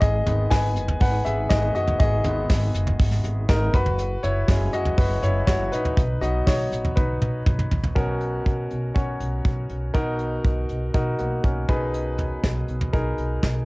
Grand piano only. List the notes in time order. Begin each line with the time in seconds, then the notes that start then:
0.01 G#4 D#5
0.26 D#3 G#3 B3
0.50 B4 G#5
1.01 B4 F#5
1.25 G#4 E5
1.50 D#3 G#3 B3 G#4 D#5
1.75 F#4 D#5
2.00 G#4 D#5
2.25 D#3 G#3 B3
3.49 D#4 A#4
3.74 F#4 B4
4.23 E4 C#5
4.47 F#3 G#3 C#4
4.73 F#4 D#5
4.98 F#4 B4
5.23 E4 C#5
5.47 F#4 C#5
5.72 D#4 B4
6.21 F#3 B3 D#4 F#4 D#5
6.47 F#4 C#5
6.96 D#4 B4
7.95 B2 C#4 F#4 A#4
8.94 C#4 F#4 C#5
9.94 B2 D#4 F#4 A#4
10.94 D#4 F#4 A#4
11.19 A#3 F#4
11.44 C#4 A#4
11.69 B2 D#4 G#4 B4
12.93 D#4 G#4 A#4